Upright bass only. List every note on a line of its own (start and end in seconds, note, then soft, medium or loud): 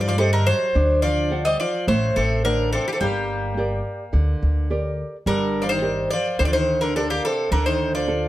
0.00 0.50 G2 medium
0.75 1.55 D2 medium
1.88 2.08 A1 medium
2.16 2.76 A1 medium
3.01 3.80 G1 medium
4.13 4.33 D2 medium
4.42 5.02 D2 medium
5.26 6.05 G1 medium
6.40 7.18 D2 medium
7.51 8.28 D2 medium